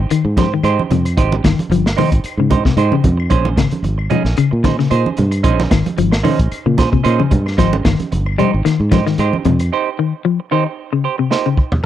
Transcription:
0.10 clean electric guitar D#3, muted fingered electric bass stroke, closed hi-hat, claves
0.25 fingered electric bass G#2, muted clean electric guitar stroke
0.37 clean electric guitar F3 G4 C5, muted clean electric guitar stroke, kick, snare, closed hi-hat, high conga
0.52 clean electric guitar D#3, muted clean electric guitar stroke
0.63 fingered electric bass G#2, clean electric guitar D#4 G4 C5, closed hi-hat, claves
0.79 high conga
0.90 fingered electric bass F2, clean electric guitar C3, muted clean electric guitar stroke, closed hi-hat, low conga
1.05 muted clean electric guitar stroke, closed hi-hat, claves
1.17 fingered electric bass G#1, clean electric guitar D#4 G4 C5, kick, closed hi-hat, low conga
1.32 high conga
1.44 fingered electric bass G1, clean electric guitar D#3, muted clean electric guitar stroke, kick, snare, closed hi-hat, claves
1.59 muted fingered electric bass stroke, closed hi-hat, high conga
1.70 fingered electric bass G1, clean electric guitar F3, muted clean electric guitar stroke, closed hi-hat, high conga
1.86 muted clean electric guitar stroke, snare, claves
1.97 clean electric guitar D#3 D#4 G4 C5, open hi-hat, high conga, low conga
2.12 fingered electric bass G#1, muted clean electric guitar stroke, kick, closed hi-hat
2.24 muted fingered electric bass stroke, closed hi-hat, claves
2.37 fingered electric bass G#2, clean electric guitar C#3, muted clean electric guitar stroke
2.50 clean electric guitar D#4 G4 C5, kick, closed hi-hat, high conga, low conga
2.65 clean electric guitar C3, muted clean electric guitar stroke, kick, snare
2.77 fingered electric bass G#2, clean electric guitar D#4 G4 C5, closed hi-hat, claves
2.92 clean electric guitar C#3, high conga
3.04 fingered electric bass F2, muted clean electric guitar stroke, kick, closed hi-hat, high conga, low conga
3.17 muted clean electric guitar stroke, claves
3.30 fingered electric bass A#1, clean electric guitar C#4 G#4 C5, muted clean electric guitar stroke, kick, closed hi-hat, low conga
3.45 high conga
3.56 fingered electric bass G#1, clean electric guitar C#3, muted clean electric guitar stroke, kick, snare, closed hi-hat, claves
3.71 muted fingered electric bass stroke, closed hi-hat, high conga
3.83 fingered electric bass G#1, muted clean electric guitar stroke, closed hi-hat, high conga
3.98 muted clean electric guitar stroke, claves
4.10 clean electric guitar F3 C#4 D#4 G#4, closed hi-hat, high conga, low conga
4.25 fingered electric bass A#1, muted clean electric guitar stroke, snare
4.37 clean electric guitar C#3, closed hi-hat, claves
4.51 fingered electric bass A#2, muted clean electric guitar stroke
4.64 clean electric guitar D#3 D#4 G#4 C5, muted clean electric guitar stroke, kick, snare, closed hi-hat, high conga, low conga
4.79 clean electric guitar C#3, muted clean electric guitar stroke, snare
4.90 fingered electric bass A#2, clean electric guitar D#4 G#4 C5, closed hi-hat, claves
5.06 high conga
5.17 fingered electric bass G2, muted clean electric guitar stroke, closed hi-hat, low conga
5.31 muted clean electric guitar stroke, closed hi-hat, claves
5.43 fingered electric bass A#1, clean electric guitar C#4 D#4 G#4 C5, kick, closed hi-hat, low conga
5.59 snare, high conga
5.70 fingered electric bass G#1, clean electric guitar D#3, muted clean electric guitar stroke, kick, snare, closed hi-hat, claves
5.86 muted fingered electric bass stroke, closed hi-hat, high conga
5.97 fingered electric bass G#1, clean electric guitar F3, muted clean electric guitar stroke, closed hi-hat
6.12 muted clean electric guitar stroke, snare, claves
6.23 clean electric guitar D#3 C#4 D#4 G#4 C5, open hi-hat, high conga, low conga
6.39 fingered electric bass A#1, muted clean electric guitar stroke, kick, closed hi-hat
6.52 closed hi-hat, claves
6.66 fingered electric bass A#2, clean electric guitar C#3, muted clean electric guitar stroke
6.78 clean electric guitar G#4 C5, muted clean electric guitar stroke, kick, snare, closed hi-hat, high conga, low conga
6.92 clean electric guitar C3, muted clean electric guitar stroke, kick
7.03 fingered electric bass A#2, clean electric guitar C#4 D#4 G#4 C5, closed hi-hat, claves
7.20 clean electric guitar C#3, high conga
7.31 fingered electric bass G2, muted clean electric guitar stroke, kick, closed hi-hat, low conga
7.46 muted clean electric guitar stroke, snare, claves
7.58 fingered electric bass G#1, clean electric guitar F3 D#4 G4 C5, kick, snare, closed hi-hat, low conga
7.73 high conga
7.84 fingered electric bass G1, clean electric guitar D#3, muted clean electric guitar stroke, kick, snare, closed hi-hat, claves
8.00 muted fingered electric bass stroke, closed hi-hat, high conga
8.12 fingered electric bass G1, muted clean electric guitar stroke, closed hi-hat, high conga
8.26 muted clean electric guitar stroke, claves
8.38 clean electric guitar G3 D#4 G4 C5, closed hi-hat, high conga, low conga
8.53 fingered electric bass G#1, muted clean electric guitar stroke
8.65 clean electric guitar D#3, snare, closed hi-hat, claves
8.80 fingered electric bass G#2, muted clean electric guitar stroke
8.91 clean electric guitar F3 D#4 G4 C5, kick, snare, closed hi-hat, high conga, low conga
9.06 clean electric guitar D#3, muted clean electric guitar stroke, snare
9.18 fingered electric bass G#2, clean electric guitar D#4 G4 C5, closed hi-hat, claves
9.33 high conga
9.45 fingered electric bass F2, clean electric guitar C3, muted clean electric guitar stroke, closed hi-hat, low conga
9.59 muted clean electric guitar stroke, closed hi-hat, claves
9.72 clean electric guitar D#4 G4 C5
9.99 clean electric guitar D#3, muted clean electric guitar stroke
10.25 clean electric guitar F3, muted clean electric guitar stroke
10.40 muted clean electric guitar stroke
10.51 clean electric guitar D#3 D#4 G4 C5
10.93 clean electric guitar C#3, muted clean electric guitar stroke
11.04 clean electric guitar G4 C5
11.18 clean electric guitar C3, muted clean electric guitar stroke
11.31 clean electric guitar D#4 G4 C5, snare
11.46 clean electric guitar C#3
11.57 muted clean electric guitar stroke, kick
11.72 muted clean electric guitar stroke, floor tom

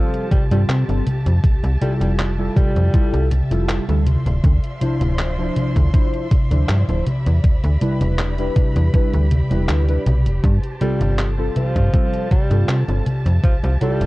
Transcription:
Already playing: tenor saxophone F3, synth keys G3 C4 F4 A4, string section G4 C5 A5
0.14 closed hi-hat
0.31 tenor saxophone G3, kick, closed hi-hat, high conga
0.51 fm bass G2, synth keys G3 C4 F4 A4, tenor saxophone G3, closed hi-hat, high conga
0.69 fm bass C3, clap, closed hi-hat, high conga
0.88 fm bass G1, synth keys G3 C4 F4 A4, closed hi-hat
1.06 string section E5, closed hi-hat, high conga
1.26 fm bass F2, closed hi-hat, high conga
1.44 fm bass C2, kick, closed hi-hat, high conga
1.64 fm bass C2, closed hi-hat
1.80 synth keys G3 E4 F4 A4, tenor saxophone G3, closed hi-hat, high conga
2.01 fm bass F1, tenor saxophone G3, closed hi-hat, high conga
2.19 clap, closed hi-hat, high conga
2.38 synth keys G3 E4 F4 A4
2.56 tenor saxophone G3, kick, closed hi-hat, high conga
2.76 fm bass F2, closed hi-hat, high conga
2.93 synth keys G3 E4 F4 A4, kick, closed hi-hat, high conga
3.13 fm bass C2, closed hi-hat
3.31 closed hi-hat, high conga
3.50 fm bass F1, synth keys G3 E4 F4 A4, closed hi-hat, high conga
3.69 clap, closed hi-hat, high conga
3.88 fm bass D2, synth keys G3 E4 F4 A4, closed hi-hat
4.06 string section F3 D5 C6, closed hi-hat, high conga
4.26 fm bass D1, closed hi-hat, high conga
4.44 fm bass D2, kick, closed hi-hat, high conga
4.64 closed hi-hat
4.80 synth keys F3 D4 E4 C5, closed hi-hat, high conga
5.01 fm bass D1, closed hi-hat, high conga
5.19 clap, closed hi-hat, high conga
5.38 synth keys F3 D4 E4 C5
5.56 closed hi-hat, high conga
5.76 fm bass D2, kick, closed hi-hat, high conga
5.93 synth keys F3 D4 E4 C5, kick, closed hi-hat, high conga
6.14 closed hi-hat
6.31 kick, closed hi-hat, high conga
6.51 fm bass D2, synth keys F3 D4 E4 C5, closed hi-hat, high conga
6.69 fm bass G2, clap, closed hi-hat, high conga
6.88 fm bass D1, synth keys F3 D4 E4 C5, closed hi-hat
7.06 string section G4 B5, closed hi-hat, high conga
7.26 fm bass E2, closed hi-hat, high conga
7.44 fm bass D2, kick, closed hi-hat, high conga
7.64 fm bass D2, closed hi-hat
7.81 synth keys G3 D4 E4 B4, closed hi-hat, high conga
8.01 fm bass E1, closed hi-hat, high conga
8.19 clap, closed hi-hat, high conga
8.38 synth keys G3 D4 E4 B4, closed hi-hat
8.56 kick, closed hi-hat, high conga
8.76 fm bass E2, closed hi-hat, high conga
8.93 synth keys G3 D4 E4 B4, kick, closed hi-hat, high conga
9.13 fm bass D2, closed hi-hat
9.31 closed hi-hat, high conga
9.50 fm bass E1, synth keys G3 D4 E4 B4, closed hi-hat, high conga
9.69 fm bass D2, clap, closed hi-hat, high conga
9.87 synth keys G3 D4 E4 B4, closed hi-hat
10.06 fm bass B1, closed hi-hat, high conga
10.26 fm bass E1, closed hi-hat, high conga
10.44 fm bass G2, string section C5 A5, kick, closed hi-hat
10.64 closed hi-hat
10.80 synth keys G3 C4 F4 A4, tenor saxophone G3, closed hi-hat, high conga
11.01 fm bass G1, closed hi-hat, high conga
11.19 clap, closed hi-hat, high conga
11.38 synth keys G3 C4 F4 A4
11.56 tenor saxophone F3, closed hi-hat, high conga
11.76 fm bass G2, kick, closed hi-hat, high conga
11.93 synth keys G3 C4 F4 A4, kick, closed hi-hat, high conga
12.14 closed hi-hat
12.31 tenor saxophone G3, kick, closed hi-hat, high conga
12.50 fm bass G2, synth keys G3 C4 F4 A4, closed hi-hat, high conga
12.69 fm bass C3, clap, closed hi-hat, high conga
12.88 fm bass G1, synth keys G3 C4 F4 A4, closed hi-hat
13.06 string section G4 E5, closed hi-hat, high conga
13.26 fm bass F2, closed hi-hat, high conga
13.44 fm bass C2, tenor saxophone F3, kick, closed hi-hat, high conga
13.64 fm bass C2, tenor saxophone F3, closed hi-hat
13.80 synth keys G3 E4 F4 A4, tenor saxophone G3, closed hi-hat, high conga
14.01 fm bass F1, closed hi-hat, high conga

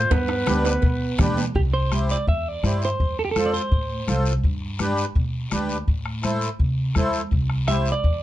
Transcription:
Already playing: clean electric guitar F4, clarinet C5
0.11 upright bass G2, clean electric guitar B3, clarinet B4, bombo low, cowbell, high conga, high timbale, long guiro
0.28 bombo rim, high timbale
0.46 upright bass D2, accordion D4 G4 B4, bombo rim, cowbell, high conga, high timbale, short guiro
0.65 high timbale, short guiro
0.82 upright bass B2, bombo low, cowbell, high conga, long guiro
1.19 upright bass B2, accordion D4 G4 B4, bombo low, bombo rim, cowbell, high conga, low conga, low timbale, short guiro
1.37 low timbale, short guiro
1.55 upright bass C2, clean electric guitar G4, bombo low, high conga, long guiro
1.74 clean electric guitar C5
1.92 accordion E4 G4 C5, bombo rim, high conga, short guiro
2.09 clean electric guitar D5, short guiro
2.27 upright bass E2, clean electric guitar E5, bombo low, high conga, long guiro
2.48 clean electric guitar D5
2.63 upright bass G2, accordion E4 G4 C5, bombo rim, high conga, short guiro
2.82 clean electric guitar C5, short guiro
3.00 upright bass F2, bombo low, high conga, long guiro
3.19 clean electric guitar A4
3.25 clean electric guitar G4
3.31 clean electric guitar A4
3.36 accordion F4 A4 C5, bombo rim, high conga, short guiro
3.46 clean electric guitar D5
3.54 clean electric guitar C5, short guiro
3.72 upright bass A2, bombo low, high conga, long guiro
4.07 upright bass C2, accordion F4 A4 C5, bombo rim, high conga, short guiro
4.25 short guiro
4.43 upright bass G2, bombo low, high conga, long guiro
4.79 accordion D4 G4 B4, bombo rim, high conga, short guiro
4.97 short guiro
5.15 upright bass B2, bombo low, high conga, long guiro
5.51 upright bass D2, accordion D4 G4 B4, bombo rim, high conga, short guiro
5.69 short guiro
5.88 upright bass A2, bombo low, high conga, long guiro
6.06 bombo rim
6.23 accordion E4 A4 C5, bombo rim, high conga, short guiro
6.41 short guiro
6.59 upright bass C3, bombo low, high conga, long guiro
6.95 upright bass E2, accordion E4 A4 C5, bombo low, bombo rim, high conga, short guiro
7.13 short guiro
7.31 upright bass C2, bombo low, high conga, long guiro
7.50 bombo rim
7.68 accordion E4 G4 C5, clean electric guitar E5, bombo rim, high conga, short guiro
7.86 short guiro
7.92 clean electric guitar D5
8.04 upright bass E2, bombo low, high conga, long guiro

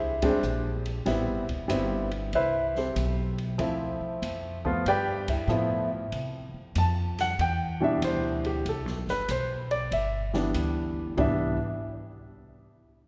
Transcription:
Already playing: upright bass C2, grand piano G3 G#3 C4 D4 E4 G#4 C5 E5
0.22 grand piano G3 G#3 C4 D4 G#4 C5, kick, ride
0.26 grand piano G4
0.43 upright bass A#1, hi-hat pedal
0.86 ride
1.06 upright bass A1, grand piano G3 B3 C4 E4, kick, snare, ride
1.28 upright bass G1
1.48 upright bass E1, kick, ride
1.68 upright bass G1, grand piano G3 B3 C4 E4, kick, hi-hat pedal, ride
2.11 ride
2.33 upright bass C2, grand piano E4 B4 C5 E5, kick, ride
2.76 grand piano C4 G4 A4 C5, snare
2.96 upright bass B1, kick, hi-hat pedal, ride
3.38 ride
3.58 upright bass D2, grand piano F3 A3 C4 E4, kick, ride
4.01 muted upright bass stroke
4.22 upright bass F2, kick, hi-hat pedal, ride
4.65 grand piano F3 A3 B3 F4, kick
4.86 upright bass G2, grand piano G4 B4 D5 G5, kick, ride
5.28 grand piano E4 E5, kick, ride
5.48 upright bass A2, grand piano F3 A3 B3 E4, hi-hat pedal
6.12 upright bass C3, kick, ride
6.54 muted upright bass stroke
6.75 upright bass F2, grand piano A5, kick, hi-hat pedal, ride
7.19 grand piano F#5, snare, ride
7.39 upright bass E2, grand piano G5, kick, ride
7.80 grand piano B2 E3 G3 D4 E5
8.02 upright bass D2, grand piano C5, kick, hi-hat pedal, ride
8.45 grand piano G4, ride
8.66 upright bass C2, grand piano A4, kick, ride
8.86 upright bass B1, snare
9.07 upright bass G1, grand piano B4, snare
9.29 upright bass B1, grand piano C5, kick, hi-hat pedal, ride
9.71 grand piano D5, ride
9.91 upright bass G1, grand piano E5, kick, ride
10.33 grand piano E3 G3 B3 D4, snare
10.54 upright bass D2, kick, hi-hat pedal, ride
11.17 upright bass C2, grand piano E3 G3 B3 D4 E5, kick, floor tom

